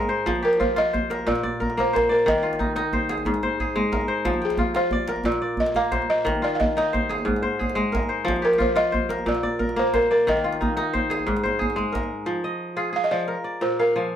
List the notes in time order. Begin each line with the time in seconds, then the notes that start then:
Already playing: G#2 G#3 D#4 G#4 A#4
0.03 djembe tone
0.09 C5
0.26 F3, djembe slap, djembe bass
0.36 djembe tone
0.43 G4 A#4
0.53 djembe slap
0.60 F4 C5, djembe tone, djembe bass
0.76 F4 D#5, djembe slap
0.93 C5, djembe tone, djembe bass
1.02 djembe slap
1.10 A#4, djembe slap
1.19 djembe tone
1.27 A#2 D5, djembe bass
1.35 djembe slap
1.43 D5, djembe tone
1.60 A#4, djembe bass
1.70 djembe slap
1.77 A#3 C5, djembe slap, djembe tone
1.93 A#4 C5, djembe slap, djembe bass
2.03 djembe tone
2.09 A#4 D5
2.26 D#3 D#5, djembe slap, djembe bass
2.38 djembe slap, djembe tone
2.43 F4
2.53 djembe slap
2.59 D#4, djembe tone, djembe bass
2.76 D#4, djembe slap
2.93 C5, djembe tone, djembe bass
3.09 G#4, djembe slap
3.18 djembe slap, djembe tone
3.25 G#2, djembe bass
3.34 djembe slap
3.43 C5, djembe tone
3.60 G#4, djembe slap, djembe bass
3.76 G#3, djembe tone
3.84 djembe slap
3.92 A#4, djembe slap, djembe bass
4.01 djembe slap, djembe tone
4.08 C5, djembe slap
4.16 djembe slap
4.25 F3, djembe slap, djembe bass
4.34 djembe tone
4.42 G#4 G5
4.50 djembe slap
4.58 F4, djembe tone, djembe bass
4.75 F4 C5, djembe slap
4.91 D5, djembe tone, djembe bass
5.00 djembe slap
5.08 A#4, djembe slap
5.16 djembe tone
5.24 A#2 D5, djembe bass
5.32 djembe slap
5.42 D5
5.57 D#5, djembe bass
5.66 djembe slap
5.75 A#3 F5, djembe slap, djembe tone
5.92 C5, djembe slap, djembe bass
6.02 djembe tone
6.10 D#5
6.25 D#3, djembe slap, djembe bass
6.35 djembe tone
6.42 F4 D5
6.55 F5
6.60 D#5, djembe tone, djembe bass
6.77 D#4 D#5, djembe slap
6.93 C5, djembe tone, djembe bass
7.03 djembe slap
7.09 G#4, djembe slap
7.18 djembe tone
7.25 G#2, djembe bass
7.36 djembe slap
7.42 C5, djembe tone
7.59 G#4, djembe bass
7.69 djembe slap
7.75 G#3, djembe slap, djembe tone
7.92 A#4, djembe slap, djembe bass
8.03 djembe tone
8.09 C5
8.25 F3, djembe slap, djembe bass
8.36 djembe tone
8.42 G4 A#4
8.53 djembe slap
8.58 F4 C5, djembe tone, djembe bass
8.76 F4 D#5, djembe slap
8.92 C5, djembe tone, djembe bass
9.03 djembe slap
9.09 A#4, djembe slap
9.18 djembe tone
9.26 A#2 D5, djembe bass
9.35 djembe slap
9.43 D5, djembe tone
9.59 A#4, djembe bass
9.69 djembe slap
9.76 A#3 C5, djembe slap, djembe tone
9.94 A#4 C5, djembe slap, djembe bass
10.02 djembe tone
10.11 A#4 D5
10.27 D#3 D#5, djembe slap, djembe bass
10.37 djembe tone
10.44 F4
10.53 djembe slap
10.61 D#4, djembe tone, djembe bass
10.77 D#4, djembe slap
10.93 C5, djembe tone, djembe bass
11.10 G#4, djembe slap
11.19 djembe slap, djembe tone
11.27 G#2, djembe slap, djembe bass
11.36 djembe slap
11.43 C5, djembe slap, djembe tone
11.59 G#4, djembe bass
11.70 djembe slap
11.76 G#3, djembe slap, djembe tone
11.92 A#4, djembe slap, djembe bass
12.03 djembe tone
12.26 F3
12.44 D#5
12.77 F4 G#4
12.93 G#4 F5
13.04 D#5
13.11 F3 D5
13.28 A#4
13.44 D5
13.61 A#2 C5
13.79 A#4 F5
13.96 F3 G#5